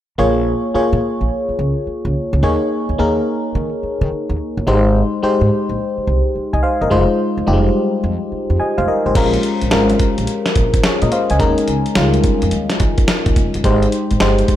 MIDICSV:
0, 0, Header, 1, 5, 480
1, 0, Start_track
1, 0, Tempo, 560748
1, 156, Time_signature, 4, 2, 24, 8
1, 12463, End_track
2, 0, Start_track
2, 0, Title_t, "FM electric piano"
2, 0, Program_c, 0, 5
2, 156, Note_on_c, 0, 58, 82
2, 159, Note_on_c, 0, 65, 72
2, 162, Note_on_c, 0, 68, 75
2, 166, Note_on_c, 0, 73, 96
2, 341, Control_c, 0, 64, 127
2, 500, Note_off_c, 0, 58, 0
2, 502, Note_off_c, 0, 65, 0
2, 503, Note_off_c, 0, 68, 0
2, 505, Note_off_c, 0, 73, 0
2, 637, Note_on_c, 0, 58, 77
2, 640, Note_on_c, 0, 65, 73
2, 643, Note_on_c, 0, 68, 73
2, 647, Note_on_c, 0, 73, 89
2, 1301, Note_off_c, 0, 58, 0
2, 1302, Note_off_c, 0, 65, 0
2, 1304, Note_off_c, 0, 68, 0
2, 1306, Note_off_c, 0, 73, 0
2, 2077, Note_on_c, 0, 58, 81
2, 2081, Note_on_c, 0, 63, 70
2, 2083, Note_on_c, 0, 68, 80
2, 2086, Control_c, 0, 64, 0
2, 2088, Note_on_c, 0, 73, 93
2, 2240, Control_c, 0, 64, 127
2, 2421, Note_off_c, 0, 58, 0
2, 2422, Note_off_c, 0, 63, 0
2, 2424, Note_off_c, 0, 68, 0
2, 2426, Note_off_c, 0, 73, 0
2, 2554, Note_on_c, 0, 58, 84
2, 2559, Note_on_c, 0, 63, 69
2, 2561, Note_on_c, 0, 68, 75
2, 2565, Note_on_c, 0, 70, 87
2, 3219, Note_off_c, 0, 58, 0
2, 3222, Note_off_c, 0, 63, 0
2, 3223, Note_off_c, 0, 68, 0
2, 3225, Note_off_c, 0, 70, 0
2, 3996, Note_on_c, 0, 56, 82
2, 3999, Note_on_c, 0, 63, 77
2, 4002, Note_on_c, 0, 67, 72
2, 4006, Note_on_c, 0, 72, 93
2, 4008, Control_c, 0, 64, 0
2, 4170, Control_c, 0, 64, 127
2, 4340, Note_off_c, 0, 56, 0
2, 4342, Note_off_c, 0, 63, 0
2, 4343, Note_off_c, 0, 67, 0
2, 4345, Note_off_c, 0, 72, 0
2, 4474, Note_on_c, 0, 56, 83
2, 4478, Note_on_c, 0, 63, 76
2, 4481, Note_on_c, 0, 67, 82
2, 4484, Note_on_c, 0, 72, 89
2, 5139, Note_off_c, 0, 56, 0
2, 5141, Note_off_c, 0, 63, 0
2, 5143, Note_off_c, 0, 67, 0
2, 5144, Note_off_c, 0, 72, 0
2, 5592, Note_on_c, 0, 80, 61
2, 5597, Note_on_c, 0, 75, 52
2, 5672, Note_off_c, 0, 80, 0
2, 5673, Note_on_c, 0, 77, 72
2, 5675, Note_off_c, 0, 75, 0
2, 5680, Note_on_c, 0, 72, 61
2, 5823, Note_off_c, 0, 77, 0
2, 5826, Note_off_c, 0, 72, 0
2, 5832, Note_on_c, 0, 75, 67
2, 5838, Note_on_c, 0, 70, 56
2, 5909, Note_on_c, 0, 56, 87
2, 5913, Note_on_c, 0, 63, 79
2, 5916, Note_on_c, 0, 65, 82
2, 5918, Note_on_c, 0, 72, 91
2, 5927, Control_c, 0, 64, 0
2, 6060, Note_off_c, 0, 75, 0
2, 6063, Note_off_c, 0, 70, 0
2, 6083, Control_c, 0, 64, 127
2, 6257, Note_off_c, 0, 56, 0
2, 6258, Note_off_c, 0, 63, 0
2, 6260, Note_off_c, 0, 65, 0
2, 6261, Note_off_c, 0, 72, 0
2, 6390, Note_on_c, 0, 55, 69
2, 6394, Note_on_c, 0, 63, 80
2, 6397, Note_on_c, 0, 65, 73
2, 6401, Note_on_c, 0, 67, 87
2, 6445, Note_on_c, 0, 56, 81
2, 6465, Note_off_c, 0, 55, 0
2, 7059, Note_off_c, 0, 63, 0
2, 7061, Note_off_c, 0, 65, 0
2, 7063, Note_off_c, 0, 67, 0
2, 7085, Note_off_c, 0, 56, 0
2, 7358, Note_on_c, 0, 80, 67
2, 7364, Note_on_c, 0, 75, 52
2, 7505, Note_off_c, 0, 80, 0
2, 7508, Note_off_c, 0, 75, 0
2, 7513, Note_on_c, 0, 77, 66
2, 7517, Note_on_c, 0, 72, 57
2, 7592, Note_off_c, 0, 77, 0
2, 7595, Note_off_c, 0, 72, 0
2, 7599, Note_on_c, 0, 75, 65
2, 7603, Note_on_c, 0, 70, 56
2, 7746, Note_off_c, 0, 75, 0
2, 7748, Note_off_c, 0, 70, 0
2, 7756, Note_on_c, 0, 72, 70
2, 7759, Note_on_c, 0, 67, 54
2, 7835, Note_on_c, 0, 56, 84
2, 7838, Note_on_c, 0, 61, 75
2, 7842, Note_on_c, 0, 65, 78
2, 7845, Note_on_c, 0, 70, 95
2, 7848, Control_c, 0, 64, 0
2, 7978, Control_c, 0, 64, 127
2, 7982, Note_off_c, 0, 72, 0
2, 7984, Note_off_c, 0, 67, 0
2, 8180, Note_off_c, 0, 56, 0
2, 8181, Note_off_c, 0, 61, 0
2, 8183, Note_off_c, 0, 65, 0
2, 8185, Note_off_c, 0, 70, 0
2, 8314, Note_on_c, 0, 56, 89
2, 8316, Note_on_c, 0, 61, 81
2, 8320, Note_on_c, 0, 65, 75
2, 8324, Note_on_c, 0, 70, 94
2, 8979, Note_off_c, 0, 56, 0
2, 8980, Note_off_c, 0, 61, 0
2, 8982, Note_off_c, 0, 65, 0
2, 8984, Note_off_c, 0, 70, 0
2, 9280, Note_on_c, 0, 73, 59
2, 9285, Note_on_c, 0, 68, 51
2, 9426, Note_off_c, 0, 73, 0
2, 9429, Note_off_c, 0, 68, 0
2, 9435, Note_on_c, 0, 75, 64
2, 9441, Note_on_c, 0, 70, 54
2, 9513, Note_off_c, 0, 75, 0
2, 9516, Note_off_c, 0, 70, 0
2, 9520, Note_on_c, 0, 77, 66
2, 9525, Note_on_c, 0, 72, 62
2, 9666, Note_off_c, 0, 77, 0
2, 9669, Note_off_c, 0, 72, 0
2, 9678, Note_on_c, 0, 80, 62
2, 9682, Note_on_c, 0, 75, 53
2, 9751, Note_on_c, 0, 56, 86
2, 9754, Note_on_c, 0, 61, 74
2, 9759, Note_on_c, 0, 63, 81
2, 9761, Note_on_c, 0, 70, 89
2, 9768, Control_c, 0, 64, 0
2, 9892, Control_c, 0, 64, 127
2, 9903, Note_off_c, 0, 80, 0
2, 9905, Note_off_c, 0, 75, 0
2, 10098, Note_off_c, 0, 56, 0
2, 10099, Note_off_c, 0, 61, 0
2, 10101, Note_off_c, 0, 63, 0
2, 10103, Note_off_c, 0, 70, 0
2, 10236, Note_on_c, 0, 55, 68
2, 10238, Note_on_c, 0, 61, 74
2, 10242, Note_on_c, 0, 63, 74
2, 10244, Note_on_c, 0, 65, 89
2, 10291, Note_on_c, 0, 56, 82
2, 10308, Note_off_c, 0, 55, 0
2, 10901, Note_off_c, 0, 61, 0
2, 10903, Note_off_c, 0, 63, 0
2, 10904, Note_off_c, 0, 65, 0
2, 10928, Note_off_c, 0, 56, 0
2, 11676, Note_on_c, 0, 56, 86
2, 11679, Note_on_c, 0, 63, 81
2, 11683, Note_on_c, 0, 67, 74
2, 11686, Note_on_c, 0, 72, 93
2, 11688, Control_c, 0, 64, 0
2, 11848, Control_c, 0, 64, 127
2, 12020, Note_off_c, 0, 56, 0
2, 12022, Note_off_c, 0, 63, 0
2, 12024, Note_off_c, 0, 67, 0
2, 12025, Note_off_c, 0, 72, 0
2, 12158, Note_on_c, 0, 56, 89
2, 12160, Note_on_c, 0, 63, 73
2, 12165, Note_on_c, 0, 67, 75
2, 12167, Note_on_c, 0, 72, 92
2, 12463, Note_off_c, 0, 56, 0
2, 12463, Note_off_c, 0, 63, 0
2, 12463, Note_off_c, 0, 67, 0
2, 12463, Note_off_c, 0, 72, 0
2, 12463, End_track
3, 0, Start_track
3, 0, Title_t, "Upright bass"
3, 0, Program_c, 1, 32
3, 158, Note_on_c, 1, 34, 106
3, 447, Note_off_c, 1, 34, 0
3, 793, Note_on_c, 1, 46, 97
3, 854, Note_off_c, 1, 46, 0
3, 1034, Note_on_c, 1, 34, 77
3, 1095, Note_off_c, 1, 34, 0
3, 1359, Note_on_c, 1, 37, 86
3, 1472, Note_off_c, 1, 37, 0
3, 1754, Note_on_c, 1, 37, 90
3, 1815, Note_off_c, 1, 37, 0
3, 1994, Note_on_c, 1, 37, 93
3, 2055, Note_off_c, 1, 37, 0
3, 2078, Note_on_c, 1, 39, 106
3, 2191, Note_off_c, 1, 39, 0
3, 2474, Note_on_c, 1, 39, 84
3, 2535, Note_off_c, 1, 39, 0
3, 2560, Note_on_c, 1, 39, 93
3, 2734, Note_off_c, 1, 39, 0
3, 3039, Note_on_c, 1, 51, 93
3, 3152, Note_off_c, 1, 51, 0
3, 3436, Note_on_c, 1, 51, 104
3, 3496, Note_off_c, 1, 51, 0
3, 3677, Note_on_c, 1, 39, 90
3, 3736, Note_off_c, 1, 39, 0
3, 3915, Note_on_c, 1, 31, 88
3, 3976, Note_off_c, 1, 31, 0
3, 3999, Note_on_c, 1, 32, 110
3, 4287, Note_off_c, 1, 32, 0
3, 4633, Note_on_c, 1, 44, 97
3, 4694, Note_off_c, 1, 44, 0
3, 4874, Note_on_c, 1, 34, 91
3, 4935, Note_off_c, 1, 34, 0
3, 5199, Note_on_c, 1, 36, 94
3, 5312, Note_off_c, 1, 36, 0
3, 5593, Note_on_c, 1, 36, 92
3, 5654, Note_off_c, 1, 36, 0
3, 5834, Note_on_c, 1, 31, 87
3, 5894, Note_off_c, 1, 31, 0
3, 5916, Note_on_c, 1, 29, 106
3, 6030, Note_off_c, 1, 29, 0
3, 6313, Note_on_c, 1, 29, 85
3, 6374, Note_off_c, 1, 29, 0
3, 6398, Note_on_c, 1, 29, 101
3, 6573, Note_off_c, 1, 29, 0
3, 6878, Note_on_c, 1, 41, 93
3, 6991, Note_off_c, 1, 41, 0
3, 7274, Note_on_c, 1, 41, 85
3, 7335, Note_off_c, 1, 41, 0
3, 7516, Note_on_c, 1, 29, 96
3, 7576, Note_off_c, 1, 29, 0
3, 7755, Note_on_c, 1, 32, 82
3, 7816, Note_off_c, 1, 32, 0
3, 7837, Note_on_c, 1, 34, 112
3, 8012, Note_off_c, 1, 34, 0
3, 8234, Note_on_c, 1, 34, 86
3, 8295, Note_off_c, 1, 34, 0
3, 8318, Note_on_c, 1, 32, 97
3, 8492, Note_off_c, 1, 32, 0
3, 8715, Note_on_c, 1, 34, 85
3, 8775, Note_off_c, 1, 34, 0
3, 9040, Note_on_c, 1, 34, 92
3, 9214, Note_off_c, 1, 34, 0
3, 9437, Note_on_c, 1, 46, 91
3, 9496, Note_off_c, 1, 46, 0
3, 9677, Note_on_c, 1, 37, 85
3, 9736, Note_off_c, 1, 37, 0
3, 9757, Note_on_c, 1, 39, 108
3, 9870, Note_off_c, 1, 39, 0
3, 9998, Note_on_c, 1, 37, 81
3, 10111, Note_off_c, 1, 37, 0
3, 10241, Note_on_c, 1, 37, 98
3, 10414, Note_off_c, 1, 37, 0
3, 10636, Note_on_c, 1, 41, 87
3, 10696, Note_off_c, 1, 41, 0
3, 10719, Note_on_c, 1, 39, 84
3, 10832, Note_off_c, 1, 39, 0
3, 10960, Note_on_c, 1, 51, 99
3, 11072, Note_off_c, 1, 51, 0
3, 11353, Note_on_c, 1, 39, 93
3, 11414, Note_off_c, 1, 39, 0
3, 11440, Note_on_c, 1, 29, 83
3, 11552, Note_off_c, 1, 29, 0
3, 11600, Note_on_c, 1, 31, 91
3, 11658, Note_off_c, 1, 31, 0
3, 11678, Note_on_c, 1, 32, 102
3, 11853, Note_off_c, 1, 32, 0
3, 12079, Note_on_c, 1, 32, 94
3, 12138, Note_off_c, 1, 32, 0
3, 12163, Note_on_c, 1, 31, 97
3, 12336, Note_off_c, 1, 31, 0
3, 12463, End_track
4, 0, Start_track
4, 0, Title_t, "Muted upright bass strokes"
4, 640, Note_on_c, 9, 29, 46
4, 726, Note_off_c, 9, 29, 0
4, 1274, Note_on_c, 9, 29, 48
4, 1359, Note_off_c, 9, 29, 0
4, 1599, Note_on_c, 9, 29, 43
4, 1685, Note_off_c, 9, 29, 0
4, 3280, Note_on_c, 9, 29, 48
4, 3365, Note_off_c, 9, 29, 0
4, 3520, Note_on_c, 9, 29, 45
4, 3606, Note_off_c, 9, 29, 0
4, 4479, Note_on_c, 9, 29, 47
4, 4564, Note_off_c, 9, 29, 0
4, 5113, Note_on_c, 9, 29, 44
4, 5199, Note_off_c, 9, 29, 0
4, 5439, Note_on_c, 9, 29, 45
4, 5524, Note_off_c, 9, 29, 0
4, 7120, Note_on_c, 9, 29, 44
4, 7205, Note_off_c, 9, 29, 0
4, 7360, Note_on_c, 9, 29, 46
4, 7446, Note_off_c, 9, 29, 0
4, 12463, End_track
5, 0, Start_track
5, 0, Title_t, "Drums"
5, 7835, Note_on_c, 9, 36, 104
5, 7835, Note_on_c, 9, 42, 68
5, 7835, Note_on_c, 9, 49, 88
5, 7920, Note_off_c, 9, 49, 0
5, 7921, Note_off_c, 9, 36, 0
5, 7921, Note_off_c, 9, 42, 0
5, 7991, Note_on_c, 9, 42, 55
5, 8074, Note_off_c, 9, 42, 0
5, 8074, Note_on_c, 9, 42, 65
5, 8159, Note_off_c, 9, 42, 0
5, 8230, Note_on_c, 9, 42, 48
5, 8313, Note_off_c, 9, 42, 0
5, 8313, Note_on_c, 9, 38, 111
5, 8313, Note_on_c, 9, 42, 76
5, 8399, Note_off_c, 9, 38, 0
5, 8399, Note_off_c, 9, 42, 0
5, 8471, Note_on_c, 9, 42, 52
5, 8555, Note_off_c, 9, 42, 0
5, 8555, Note_on_c, 9, 42, 73
5, 8557, Note_on_c, 9, 36, 90
5, 8641, Note_off_c, 9, 42, 0
5, 8643, Note_off_c, 9, 36, 0
5, 8713, Note_on_c, 9, 42, 54
5, 8794, Note_off_c, 9, 42, 0
5, 8794, Note_on_c, 9, 42, 67
5, 8879, Note_off_c, 9, 42, 0
5, 8951, Note_on_c, 9, 38, 70
5, 8953, Note_on_c, 9, 42, 47
5, 9035, Note_off_c, 9, 42, 0
5, 9035, Note_on_c, 9, 42, 74
5, 9036, Note_off_c, 9, 38, 0
5, 9038, Note_on_c, 9, 36, 82
5, 9121, Note_off_c, 9, 42, 0
5, 9124, Note_off_c, 9, 36, 0
5, 9190, Note_on_c, 9, 42, 55
5, 9191, Note_on_c, 9, 36, 86
5, 9275, Note_off_c, 9, 42, 0
5, 9275, Note_on_c, 9, 38, 103
5, 9275, Note_on_c, 9, 42, 76
5, 9277, Note_off_c, 9, 36, 0
5, 9360, Note_off_c, 9, 42, 0
5, 9361, Note_off_c, 9, 38, 0
5, 9431, Note_on_c, 9, 42, 47
5, 9516, Note_off_c, 9, 42, 0
5, 9516, Note_on_c, 9, 42, 67
5, 9602, Note_off_c, 9, 42, 0
5, 9670, Note_on_c, 9, 42, 46
5, 9755, Note_on_c, 9, 36, 102
5, 9756, Note_off_c, 9, 42, 0
5, 9756, Note_on_c, 9, 42, 65
5, 9841, Note_off_c, 9, 36, 0
5, 9841, Note_off_c, 9, 42, 0
5, 9911, Note_on_c, 9, 42, 54
5, 9994, Note_off_c, 9, 42, 0
5, 9994, Note_on_c, 9, 42, 64
5, 10080, Note_off_c, 9, 42, 0
5, 10151, Note_on_c, 9, 42, 45
5, 10233, Note_off_c, 9, 42, 0
5, 10233, Note_on_c, 9, 38, 111
5, 10233, Note_on_c, 9, 42, 75
5, 10318, Note_off_c, 9, 38, 0
5, 10318, Note_off_c, 9, 42, 0
5, 10389, Note_on_c, 9, 42, 53
5, 10474, Note_off_c, 9, 42, 0
5, 10474, Note_on_c, 9, 42, 68
5, 10477, Note_on_c, 9, 36, 94
5, 10559, Note_off_c, 9, 42, 0
5, 10562, Note_off_c, 9, 36, 0
5, 10631, Note_on_c, 9, 42, 54
5, 10711, Note_off_c, 9, 42, 0
5, 10711, Note_on_c, 9, 42, 72
5, 10796, Note_off_c, 9, 42, 0
5, 10868, Note_on_c, 9, 38, 68
5, 10870, Note_on_c, 9, 42, 48
5, 10953, Note_off_c, 9, 38, 0
5, 10955, Note_off_c, 9, 42, 0
5, 10955, Note_on_c, 9, 42, 68
5, 10958, Note_on_c, 9, 36, 86
5, 11040, Note_off_c, 9, 42, 0
5, 11044, Note_off_c, 9, 36, 0
5, 11108, Note_on_c, 9, 42, 52
5, 11111, Note_on_c, 9, 36, 82
5, 11194, Note_off_c, 9, 42, 0
5, 11195, Note_on_c, 9, 38, 108
5, 11195, Note_on_c, 9, 42, 73
5, 11197, Note_off_c, 9, 36, 0
5, 11281, Note_off_c, 9, 38, 0
5, 11281, Note_off_c, 9, 42, 0
5, 11350, Note_on_c, 9, 42, 51
5, 11352, Note_on_c, 9, 36, 92
5, 11436, Note_off_c, 9, 42, 0
5, 11438, Note_off_c, 9, 36, 0
5, 11438, Note_on_c, 9, 42, 62
5, 11439, Note_on_c, 9, 36, 81
5, 11523, Note_off_c, 9, 42, 0
5, 11524, Note_off_c, 9, 36, 0
5, 11591, Note_on_c, 9, 42, 46
5, 11677, Note_off_c, 9, 42, 0
5, 11677, Note_on_c, 9, 36, 103
5, 11678, Note_on_c, 9, 42, 76
5, 11763, Note_off_c, 9, 36, 0
5, 11764, Note_off_c, 9, 42, 0
5, 11834, Note_on_c, 9, 42, 58
5, 11918, Note_off_c, 9, 42, 0
5, 11918, Note_on_c, 9, 42, 66
5, 12004, Note_off_c, 9, 42, 0
5, 12075, Note_on_c, 9, 42, 46
5, 12157, Note_off_c, 9, 42, 0
5, 12157, Note_on_c, 9, 38, 105
5, 12157, Note_on_c, 9, 42, 75
5, 12242, Note_off_c, 9, 38, 0
5, 12243, Note_off_c, 9, 42, 0
5, 12313, Note_on_c, 9, 42, 54
5, 12397, Note_off_c, 9, 42, 0
5, 12397, Note_on_c, 9, 42, 68
5, 12399, Note_on_c, 9, 36, 91
5, 12463, Note_off_c, 9, 36, 0
5, 12463, Note_off_c, 9, 42, 0
5, 12463, End_track
0, 0, End_of_file